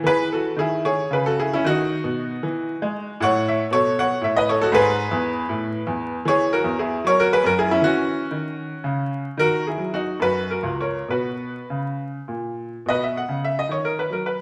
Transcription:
X:1
M:6/8
L:1/16
Q:3/8=76
K:E
V:1 name="Grand piano"
[GB]2 [FA]2 [EG]2 [Gc]2 [GB] [FA] [EG] [CE] | [DF]8- [DF]3 z | [cf]2 [ce]2 [Ac]2 [cf]2 [ce] [Bd] [Ac] [FA] | [GB]8- [GB]3 z |
[K:B] [Gc]2 [FA]2 [EG]2 [Ac] [FA] [GB] [FA] [EG] [CE] | [CF]8- [CF]3 z | [FA]2 [EG]2 [DF]2 [FB]2 [FA]2 [Ac]2 | [FB]6 z6 |
[FBd] e f2 e d c A B A B2 |]
V:2 name="Grand piano" clef=bass
E,4 D,4 C,4 | D,3 B,,3 E,3 G,3 | A,,4 B,,4 A,,4 | G,,3 E,,3 A,,3 E,,3 |
[K:B] E,3 E,,3 F,3 F,,3 | E,4 D,4 C,4 | D,3 F,3 F,,3 C,,3 | B,,4 C,4 A,,4 |
B,,3 C,3 D,3 F,3 |]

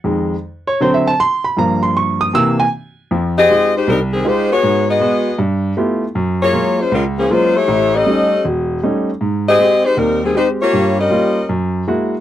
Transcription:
X:1
M:4/4
L:1/8
Q:"Swing" 1/4=157
K:Fm
V:1 name="Saxophone section"
z8 | z8 | z [CGAe]2 [A,EGc] [G,CEB] [E,G,CA] [A,EGc] [=B,_GAd]- | [=B,_GAd] [_CGAe]3 z4 |
z [B,FAd]2 [A,DFc] [A,DFB] [F,B,DA] [A,DFc] [=A,=EGd]- | [=A,=EGd] [^CG=A^d]3 z4 | z [CGAe]2 [A,EGc] [G,CEB] [E,G,CA] [A,EGc] [B,FGd]- | [B,FGd] [DGBe]3 z4 |]
V:2 name="Grand piano"
z3 d (3c =e =a c' =b | b c' d' e' =e' a z2 | z8 | z8 |
z8 | z8 | z8 | z8 |]
V:3 name="Grand piano" clef=bass
[F,,E,A,] z3 [=D,^F,C] z3 | [G,,F,B,]4 [C,=E,B,] z3 | [F,,F,]2 [A,EFG] z C,,2 [A,EFG] z | A,,2 [A,_C_G] z =G,,2 [=A,=B,=EF=G] z |
_G,,2 [_G,A,B,F] z D,,2 [G,A,B,F] z | =A,,,2 [G,=A,^C^D] z =E,,,2 [G,A,CD] z | A,,2 [A,CG] z E,,2 [A,CG] z | [G,,G,]2 [G,B,F] z _G,,2 [A,B,_F_G] z |]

